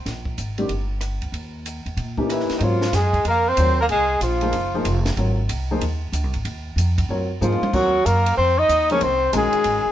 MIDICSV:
0, 0, Header, 1, 7, 480
1, 0, Start_track
1, 0, Tempo, 319829
1, 75, Time_signature, 4, 2, 24, 8
1, 14886, End_track
2, 0, Start_track
2, 0, Title_t, "Trumpet"
2, 0, Program_c, 0, 56
2, 3449, Note_on_c, 0, 64, 66
2, 3823, Note_off_c, 0, 64, 0
2, 3873, Note_on_c, 0, 63, 58
2, 3944, Note_on_c, 0, 65, 86
2, 3967, Note_off_c, 0, 63, 0
2, 4422, Note_on_c, 0, 68, 86
2, 4445, Note_off_c, 0, 65, 0
2, 4894, Note_off_c, 0, 68, 0
2, 4912, Note_on_c, 0, 70, 95
2, 5228, Note_on_c, 0, 72, 96
2, 5250, Note_off_c, 0, 70, 0
2, 5691, Note_off_c, 0, 72, 0
2, 5710, Note_on_c, 0, 70, 77
2, 5779, Note_off_c, 0, 70, 0
2, 5855, Note_on_c, 0, 68, 91
2, 6297, Note_off_c, 0, 68, 0
2, 6335, Note_on_c, 0, 65, 76
2, 7539, Note_off_c, 0, 65, 0
2, 11157, Note_on_c, 0, 65, 76
2, 11619, Note_on_c, 0, 66, 90
2, 11642, Note_off_c, 0, 65, 0
2, 12087, Note_on_c, 0, 70, 89
2, 12109, Note_off_c, 0, 66, 0
2, 12556, Note_off_c, 0, 70, 0
2, 12565, Note_on_c, 0, 72, 94
2, 12886, Note_on_c, 0, 75, 99
2, 12909, Note_off_c, 0, 72, 0
2, 13356, Note_off_c, 0, 75, 0
2, 13383, Note_on_c, 0, 73, 85
2, 13554, Note_on_c, 0, 72, 99
2, 13577, Note_off_c, 0, 73, 0
2, 14016, Note_off_c, 0, 72, 0
2, 14047, Note_on_c, 0, 68, 92
2, 14886, Note_off_c, 0, 68, 0
2, 14886, End_track
3, 0, Start_track
3, 0, Title_t, "Grand piano"
3, 0, Program_c, 1, 0
3, 874, Note_on_c, 1, 60, 57
3, 876, Note_on_c, 1, 55, 55
3, 878, Note_on_c, 1, 51, 58
3, 878, Note_on_c, 1, 62, 58
3, 887, Note_on_c, 1, 67, 65
3, 1025, Note_off_c, 1, 60, 0
3, 1026, Note_off_c, 1, 55, 0
3, 1027, Note_off_c, 1, 51, 0
3, 1027, Note_off_c, 1, 62, 0
3, 1031, Note_off_c, 1, 67, 0
3, 3264, Note_on_c, 1, 52, 60
3, 3267, Note_on_c, 1, 63, 57
3, 3272, Note_on_c, 1, 58, 55
3, 3274, Note_on_c, 1, 61, 59
3, 3277, Note_on_c, 1, 67, 63
3, 3886, Note_off_c, 1, 52, 0
3, 3888, Note_off_c, 1, 63, 0
3, 3890, Note_off_c, 1, 58, 0
3, 3892, Note_off_c, 1, 61, 0
3, 3893, Note_off_c, 1, 67, 0
3, 3929, Note_on_c, 1, 65, 47
3, 3933, Note_on_c, 1, 54, 54
3, 3933, Note_on_c, 1, 60, 52
3, 3934, Note_on_c, 1, 70, 49
3, 3935, Note_on_c, 1, 73, 62
3, 4204, Note_off_c, 1, 65, 0
3, 4206, Note_off_c, 1, 54, 0
3, 4206, Note_off_c, 1, 60, 0
3, 4206, Note_off_c, 1, 70, 0
3, 4207, Note_off_c, 1, 73, 0
3, 5371, Note_on_c, 1, 60, 51
3, 5377, Note_on_c, 1, 54, 57
3, 5377, Note_on_c, 1, 65, 50
3, 5378, Note_on_c, 1, 70, 52
3, 5392, Note_on_c, 1, 73, 64
3, 5646, Note_off_c, 1, 60, 0
3, 5649, Note_off_c, 1, 54, 0
3, 5649, Note_off_c, 1, 65, 0
3, 5649, Note_off_c, 1, 70, 0
3, 5656, Note_off_c, 1, 73, 0
3, 6634, Note_on_c, 1, 58, 55
3, 6634, Note_on_c, 1, 63, 56
3, 6635, Note_on_c, 1, 53, 62
3, 6642, Note_on_c, 1, 68, 54
3, 6646, Note_on_c, 1, 72, 68
3, 6789, Note_off_c, 1, 58, 0
3, 6789, Note_off_c, 1, 63, 0
3, 6790, Note_off_c, 1, 53, 0
3, 6793, Note_off_c, 1, 68, 0
3, 6795, Note_off_c, 1, 72, 0
3, 7119, Note_on_c, 1, 53, 65
3, 7126, Note_on_c, 1, 58, 64
3, 7127, Note_on_c, 1, 72, 75
3, 7129, Note_on_c, 1, 68, 58
3, 7131, Note_on_c, 1, 63, 60
3, 7272, Note_off_c, 1, 53, 0
3, 7275, Note_off_c, 1, 58, 0
3, 7276, Note_off_c, 1, 72, 0
3, 7277, Note_off_c, 1, 68, 0
3, 7278, Note_off_c, 1, 63, 0
3, 7773, Note_on_c, 1, 54, 60
3, 7779, Note_on_c, 1, 60, 53
3, 7781, Note_on_c, 1, 73, 60
3, 7784, Note_on_c, 1, 70, 51
3, 7785, Note_on_c, 1, 65, 51
3, 8046, Note_off_c, 1, 54, 0
3, 8050, Note_off_c, 1, 60, 0
3, 8050, Note_off_c, 1, 73, 0
3, 8052, Note_off_c, 1, 70, 0
3, 8053, Note_off_c, 1, 65, 0
3, 8569, Note_on_c, 1, 63, 65
3, 8571, Note_on_c, 1, 53, 67
3, 8573, Note_on_c, 1, 68, 61
3, 8575, Note_on_c, 1, 58, 59
3, 8583, Note_on_c, 1, 72, 77
3, 8716, Note_off_c, 1, 63, 0
3, 8717, Note_off_c, 1, 53, 0
3, 8718, Note_off_c, 1, 68, 0
3, 8720, Note_off_c, 1, 58, 0
3, 8724, Note_off_c, 1, 72, 0
3, 10655, Note_on_c, 1, 65, 48
3, 10662, Note_on_c, 1, 73, 65
3, 10663, Note_on_c, 1, 70, 53
3, 10668, Note_on_c, 1, 54, 57
3, 10668, Note_on_c, 1, 60, 51
3, 10926, Note_off_c, 1, 65, 0
3, 10930, Note_off_c, 1, 70, 0
3, 10930, Note_off_c, 1, 73, 0
3, 10932, Note_off_c, 1, 54, 0
3, 10932, Note_off_c, 1, 60, 0
3, 11121, Note_on_c, 1, 53, 57
3, 11127, Note_on_c, 1, 68, 53
3, 11129, Note_on_c, 1, 63, 54
3, 11138, Note_on_c, 1, 58, 49
3, 11141, Note_on_c, 1, 72, 66
3, 11399, Note_off_c, 1, 53, 0
3, 11402, Note_off_c, 1, 68, 0
3, 11403, Note_off_c, 1, 63, 0
3, 11407, Note_off_c, 1, 58, 0
3, 11409, Note_off_c, 1, 72, 0
3, 11612, Note_on_c, 1, 70, 52
3, 11617, Note_on_c, 1, 54, 56
3, 11617, Note_on_c, 1, 60, 54
3, 11617, Note_on_c, 1, 65, 50
3, 11622, Note_on_c, 1, 73, 63
3, 11884, Note_off_c, 1, 70, 0
3, 11886, Note_off_c, 1, 60, 0
3, 11886, Note_off_c, 1, 65, 0
3, 11887, Note_off_c, 1, 54, 0
3, 11889, Note_off_c, 1, 73, 0
3, 13368, Note_on_c, 1, 63, 72
3, 13370, Note_on_c, 1, 53, 76
3, 13370, Note_on_c, 1, 58, 68
3, 13376, Note_on_c, 1, 68, 68
3, 13379, Note_on_c, 1, 72, 82
3, 13512, Note_off_c, 1, 63, 0
3, 13513, Note_off_c, 1, 53, 0
3, 13514, Note_off_c, 1, 58, 0
3, 13516, Note_off_c, 1, 68, 0
3, 13518, Note_off_c, 1, 72, 0
3, 13991, Note_on_c, 1, 51, 66
3, 14000, Note_on_c, 1, 66, 57
3, 14004, Note_on_c, 1, 61, 59
3, 14006, Note_on_c, 1, 56, 62
3, 14015, Note_on_c, 1, 70, 73
3, 14719, Note_off_c, 1, 51, 0
3, 14723, Note_off_c, 1, 66, 0
3, 14725, Note_off_c, 1, 61, 0
3, 14726, Note_off_c, 1, 56, 0
3, 14731, Note_off_c, 1, 70, 0
3, 14886, End_track
4, 0, Start_track
4, 0, Title_t, "Tenor saxophone"
4, 0, Program_c, 2, 66
4, 3463, Note_on_c, 2, 52, 63
4, 3830, Note_off_c, 2, 52, 0
4, 3864, Note_on_c, 2, 51, 47
4, 3963, Note_on_c, 2, 53, 72
4, 3985, Note_off_c, 2, 51, 0
4, 4453, Note_on_c, 2, 56, 75
4, 4476, Note_off_c, 2, 53, 0
4, 4910, Note_off_c, 2, 56, 0
4, 4949, Note_on_c, 2, 58, 75
4, 5234, Note_on_c, 2, 60, 80
4, 5257, Note_off_c, 2, 58, 0
4, 5694, Note_off_c, 2, 60, 0
4, 5733, Note_on_c, 2, 58, 69
4, 5797, Note_off_c, 2, 58, 0
4, 5874, Note_on_c, 2, 56, 79
4, 6308, Note_off_c, 2, 56, 0
4, 6354, Note_on_c, 2, 53, 63
4, 7548, Note_off_c, 2, 53, 0
4, 11139, Note_on_c, 2, 53, 71
4, 11623, Note_on_c, 2, 54, 72
4, 11645, Note_off_c, 2, 53, 0
4, 12092, Note_on_c, 2, 58, 79
4, 12114, Note_off_c, 2, 54, 0
4, 12554, Note_off_c, 2, 58, 0
4, 12563, Note_on_c, 2, 60, 79
4, 12882, Note_on_c, 2, 63, 84
4, 12905, Note_off_c, 2, 60, 0
4, 13354, Note_off_c, 2, 63, 0
4, 13381, Note_on_c, 2, 61, 72
4, 13554, Note_on_c, 2, 60, 75
4, 13576, Note_off_c, 2, 61, 0
4, 13991, Note_off_c, 2, 60, 0
4, 14000, Note_on_c, 2, 56, 77
4, 14886, Note_off_c, 2, 56, 0
4, 14886, End_track
5, 0, Start_track
5, 0, Title_t, "Upright bass"
5, 0, Program_c, 3, 32
5, 86, Note_on_c, 3, 34, 71
5, 528, Note_off_c, 3, 34, 0
5, 570, Note_on_c, 3, 32, 70
5, 1011, Note_off_c, 3, 32, 0
5, 1030, Note_on_c, 3, 31, 69
5, 1768, Note_off_c, 3, 31, 0
5, 1826, Note_on_c, 3, 38, 65
5, 1977, Note_off_c, 3, 38, 0
5, 1986, Note_on_c, 3, 39, 76
5, 2727, Note_off_c, 3, 39, 0
5, 2788, Note_on_c, 3, 40, 65
5, 2944, Note_off_c, 3, 40, 0
5, 2953, Note_on_c, 3, 46, 74
5, 3692, Note_off_c, 3, 46, 0
5, 3907, Note_on_c, 3, 44, 72
5, 4382, Note_off_c, 3, 44, 0
5, 4392, Note_on_c, 3, 42, 84
5, 4864, Note_off_c, 3, 42, 0
5, 4876, Note_on_c, 3, 41, 77
5, 5347, Note_off_c, 3, 41, 0
5, 5367, Note_on_c, 3, 39, 86
5, 5833, Note_off_c, 3, 39, 0
5, 5841, Note_on_c, 3, 36, 82
5, 6306, Note_off_c, 3, 36, 0
5, 6315, Note_on_c, 3, 34, 84
5, 6786, Note_off_c, 3, 34, 0
5, 6792, Note_on_c, 3, 30, 77
5, 7265, Note_off_c, 3, 30, 0
5, 7272, Note_on_c, 3, 29, 90
5, 7745, Note_off_c, 3, 29, 0
5, 7753, Note_on_c, 3, 32, 79
5, 8225, Note_off_c, 3, 32, 0
5, 8238, Note_on_c, 3, 36, 80
5, 8708, Note_off_c, 3, 36, 0
5, 8719, Note_on_c, 3, 39, 78
5, 9183, Note_off_c, 3, 39, 0
5, 9192, Note_on_c, 3, 38, 86
5, 9358, Note_off_c, 3, 38, 0
5, 9358, Note_on_c, 3, 36, 51
5, 9507, Note_off_c, 3, 36, 0
5, 9516, Note_on_c, 3, 32, 63
5, 9669, Note_off_c, 3, 32, 0
5, 9677, Note_on_c, 3, 39, 74
5, 10137, Note_off_c, 3, 39, 0
5, 10146, Note_on_c, 3, 41, 80
5, 10620, Note_off_c, 3, 41, 0
5, 10641, Note_on_c, 3, 42, 76
5, 11108, Note_off_c, 3, 42, 0
5, 11124, Note_on_c, 3, 44, 79
5, 11409, Note_off_c, 3, 44, 0
5, 11603, Note_on_c, 3, 39, 72
5, 12067, Note_off_c, 3, 39, 0
5, 12094, Note_on_c, 3, 42, 81
5, 12553, Note_off_c, 3, 42, 0
5, 12574, Note_on_c, 3, 41, 72
5, 13032, Note_off_c, 3, 41, 0
5, 13042, Note_on_c, 3, 39, 88
5, 13505, Note_off_c, 3, 39, 0
5, 13531, Note_on_c, 3, 36, 82
5, 13990, Note_off_c, 3, 36, 0
5, 14009, Note_on_c, 3, 34, 83
5, 14289, Note_off_c, 3, 34, 0
5, 14480, Note_on_c, 3, 32, 77
5, 14764, Note_off_c, 3, 32, 0
5, 14886, End_track
6, 0, Start_track
6, 0, Title_t, "Muted upright bass strokes"
6, 3751, Note_on_c, 9, 29, 33
6, 3901, Note_off_c, 9, 29, 0
6, 11433, Note_on_c, 9, 29, 37
6, 11583, Note_off_c, 9, 29, 0
6, 14316, Note_on_c, 9, 29, 41
6, 14466, Note_off_c, 9, 29, 0
6, 14786, Note_on_c, 9, 29, 37
6, 14886, Note_off_c, 9, 29, 0
6, 14886, End_track
7, 0, Start_track
7, 0, Title_t, "Drums"
7, 89, Note_on_c, 9, 38, 32
7, 92, Note_on_c, 9, 51, 49
7, 240, Note_off_c, 9, 38, 0
7, 243, Note_off_c, 9, 51, 0
7, 382, Note_on_c, 9, 36, 48
7, 532, Note_off_c, 9, 36, 0
7, 566, Note_on_c, 9, 44, 47
7, 566, Note_on_c, 9, 51, 53
7, 716, Note_off_c, 9, 44, 0
7, 716, Note_off_c, 9, 51, 0
7, 867, Note_on_c, 9, 51, 39
7, 1017, Note_off_c, 9, 51, 0
7, 1036, Note_on_c, 9, 51, 48
7, 1186, Note_off_c, 9, 51, 0
7, 1513, Note_on_c, 9, 37, 52
7, 1516, Note_on_c, 9, 44, 48
7, 1516, Note_on_c, 9, 51, 53
7, 1663, Note_off_c, 9, 37, 0
7, 1666, Note_off_c, 9, 44, 0
7, 1666, Note_off_c, 9, 51, 0
7, 1826, Note_on_c, 9, 51, 38
7, 1976, Note_off_c, 9, 51, 0
7, 2006, Note_on_c, 9, 51, 47
7, 2156, Note_off_c, 9, 51, 0
7, 2486, Note_on_c, 9, 44, 52
7, 2486, Note_on_c, 9, 51, 52
7, 2636, Note_off_c, 9, 44, 0
7, 2636, Note_off_c, 9, 51, 0
7, 2793, Note_on_c, 9, 51, 37
7, 2943, Note_off_c, 9, 51, 0
7, 2960, Note_on_c, 9, 51, 47
7, 3110, Note_off_c, 9, 51, 0
7, 3263, Note_on_c, 9, 36, 41
7, 3413, Note_off_c, 9, 36, 0
7, 3446, Note_on_c, 9, 37, 49
7, 3449, Note_on_c, 9, 44, 42
7, 3449, Note_on_c, 9, 51, 60
7, 3596, Note_off_c, 9, 37, 0
7, 3599, Note_off_c, 9, 44, 0
7, 3599, Note_off_c, 9, 51, 0
7, 3599, Note_on_c, 9, 38, 25
7, 3743, Note_on_c, 9, 51, 42
7, 3747, Note_off_c, 9, 38, 0
7, 3747, Note_on_c, 9, 38, 37
7, 3893, Note_off_c, 9, 51, 0
7, 3897, Note_off_c, 9, 38, 0
7, 3909, Note_on_c, 9, 51, 52
7, 4059, Note_off_c, 9, 51, 0
7, 4224, Note_on_c, 9, 38, 56
7, 4374, Note_off_c, 9, 38, 0
7, 4394, Note_on_c, 9, 38, 38
7, 4397, Note_on_c, 9, 44, 53
7, 4397, Note_on_c, 9, 51, 64
7, 4544, Note_off_c, 9, 38, 0
7, 4547, Note_off_c, 9, 44, 0
7, 4547, Note_off_c, 9, 51, 0
7, 4704, Note_on_c, 9, 36, 49
7, 4710, Note_on_c, 9, 51, 40
7, 4854, Note_off_c, 9, 36, 0
7, 4860, Note_off_c, 9, 51, 0
7, 4875, Note_on_c, 9, 51, 58
7, 5025, Note_off_c, 9, 51, 0
7, 5356, Note_on_c, 9, 44, 57
7, 5356, Note_on_c, 9, 51, 64
7, 5506, Note_off_c, 9, 44, 0
7, 5506, Note_off_c, 9, 51, 0
7, 5835, Note_on_c, 9, 51, 50
7, 5985, Note_off_c, 9, 51, 0
7, 6317, Note_on_c, 9, 44, 46
7, 6317, Note_on_c, 9, 51, 64
7, 6467, Note_off_c, 9, 44, 0
7, 6467, Note_off_c, 9, 51, 0
7, 6618, Note_on_c, 9, 51, 43
7, 6768, Note_off_c, 9, 51, 0
7, 6792, Note_on_c, 9, 51, 59
7, 6942, Note_off_c, 9, 51, 0
7, 7277, Note_on_c, 9, 44, 48
7, 7277, Note_on_c, 9, 51, 70
7, 7427, Note_off_c, 9, 44, 0
7, 7427, Note_off_c, 9, 51, 0
7, 7585, Note_on_c, 9, 38, 52
7, 7588, Note_on_c, 9, 51, 46
7, 7735, Note_off_c, 9, 38, 0
7, 7738, Note_off_c, 9, 51, 0
7, 7759, Note_on_c, 9, 51, 49
7, 7909, Note_off_c, 9, 51, 0
7, 8242, Note_on_c, 9, 44, 60
7, 8242, Note_on_c, 9, 51, 67
7, 8392, Note_off_c, 9, 44, 0
7, 8392, Note_off_c, 9, 51, 0
7, 8725, Note_on_c, 9, 51, 55
7, 8875, Note_off_c, 9, 51, 0
7, 9203, Note_on_c, 9, 44, 57
7, 9203, Note_on_c, 9, 51, 62
7, 9353, Note_off_c, 9, 44, 0
7, 9353, Note_off_c, 9, 51, 0
7, 9508, Note_on_c, 9, 51, 43
7, 9658, Note_off_c, 9, 51, 0
7, 9680, Note_on_c, 9, 51, 54
7, 9830, Note_off_c, 9, 51, 0
7, 10174, Note_on_c, 9, 44, 51
7, 10174, Note_on_c, 9, 51, 65
7, 10324, Note_off_c, 9, 44, 0
7, 10324, Note_off_c, 9, 51, 0
7, 10476, Note_on_c, 9, 36, 61
7, 10476, Note_on_c, 9, 51, 62
7, 10626, Note_off_c, 9, 36, 0
7, 10627, Note_off_c, 9, 51, 0
7, 11132, Note_on_c, 9, 47, 44
7, 11135, Note_on_c, 9, 44, 54
7, 11282, Note_off_c, 9, 47, 0
7, 11285, Note_off_c, 9, 44, 0
7, 11293, Note_on_c, 9, 47, 53
7, 11443, Note_off_c, 9, 47, 0
7, 11453, Note_on_c, 9, 47, 75
7, 11603, Note_off_c, 9, 47, 0
7, 11607, Note_on_c, 9, 36, 64
7, 11609, Note_on_c, 9, 49, 63
7, 11757, Note_off_c, 9, 36, 0
7, 11759, Note_off_c, 9, 49, 0
7, 12096, Note_on_c, 9, 44, 58
7, 12096, Note_on_c, 9, 51, 58
7, 12246, Note_off_c, 9, 44, 0
7, 12246, Note_off_c, 9, 51, 0
7, 12401, Note_on_c, 9, 51, 60
7, 12551, Note_off_c, 9, 51, 0
7, 13047, Note_on_c, 9, 44, 56
7, 13047, Note_on_c, 9, 51, 59
7, 13197, Note_off_c, 9, 44, 0
7, 13197, Note_off_c, 9, 51, 0
7, 13350, Note_on_c, 9, 51, 46
7, 13500, Note_off_c, 9, 51, 0
7, 13519, Note_on_c, 9, 51, 54
7, 13669, Note_off_c, 9, 51, 0
7, 14001, Note_on_c, 9, 44, 64
7, 14001, Note_on_c, 9, 51, 75
7, 14151, Note_off_c, 9, 44, 0
7, 14151, Note_off_c, 9, 51, 0
7, 14298, Note_on_c, 9, 51, 47
7, 14448, Note_off_c, 9, 51, 0
7, 14469, Note_on_c, 9, 51, 64
7, 14619, Note_off_c, 9, 51, 0
7, 14886, End_track
0, 0, End_of_file